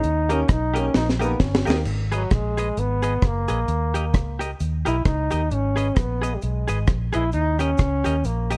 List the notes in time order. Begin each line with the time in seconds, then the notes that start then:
Already playing: D#4
0.03 D#2, closed hi-hat, cabasa
0.29 A#3 C#4 D#4 G4 A#4 D#5, closed hi-hat, cabasa
0.48 B1 D#4, muted clean electric guitar stroke, kick, cross-stick, closed hi-hat, cabasa
0.74 A#3 C#4 D#4 G4 A#4 D#5, closed hi-hat, cabasa
0.94 A#1 D#4, snare, cabasa
1.09 snare
1.19 A#3 B3 D#4 G4 A#4 D#5, cabasa
1.40 G1 C#4, kick, snare, cabasa
1.55 snare
1.65 D#2 A#3 D#4 G4 A#4 D#5, cabasa
1.70 snare
1.85 G#1, crash, cabasa
2.12 F#3 G#4 B4 D#5, closed hi-hat, cabasa
2.31 A#1 G#3, muted clean electric guitar stroke, kick, cross-stick, closed hi-hat, cabasa
2.57 G#4 B4 D#5, closed hi-hat, cabasa
2.77 G#1 B3, closed hi-hat, cabasa
3.02 G#4 B4 D#5, closed hi-hat, cabasa
3.22 F#1 A#3, kick, cross-stick, closed hi-hat, cabasa
3.48 A#1 G#4 B4 D#5, closed hi-hat, cabasa
3.68 D#2, closed hi-hat, cabasa
3.94 G4 A#4 D#5, closed hi-hat, cabasa
4.14 C#2, muted clean electric guitar stroke, kick, cross-stick, closed hi-hat, cabasa
4.39 G4 A#4 D#5, closed hi-hat, cabasa
4.60 D#2, closed hi-hat, cabasa
4.85 B1 E4 G4 A#4 D#5, closed hi-hat, cabasa
5.05 C#2 D#4, kick, cross-stick, closed hi-hat, cabasa
5.31 D#2 G4 A#4 D#5, closed hi-hat, cabasa
5.51 G#1 C#4, closed hi-hat, cabasa
5.76 G#4 B4 D#5, closed hi-hat, cabasa
5.95 A#1 B3, muted clean electric guitar stroke, kick, cross-stick, closed hi-hat, cabasa
6.22 G#4 B4 D#5, closed hi-hat, cabasa
6.35 G3
6.42 B1 G#3, closed hi-hat, cabasa
6.68 G#1 G#4 B4 D#5, closed hi-hat, cabasa
6.87 A#1, kick, cross-stick, closed hi-hat, cabasa
7.13 A#1 E4 G#4 B4 D#5, closed hi-hat, cabasa
7.32 D#2 D#4, closed hi-hat, cabasa
7.59 C#4 G4 A#4 D#5, closed hi-hat, cabasa
7.78 C#2, muted clean electric guitar stroke, kick, cross-stick, closed hi-hat, cabasa
8.04 D#2 G4 A#4 D#5, closed hi-hat, cabasa
8.24 A#1 A#3, closed hi-hat, cabasa
8.51 G4 A#4 D#5, closed hi-hat, cabasa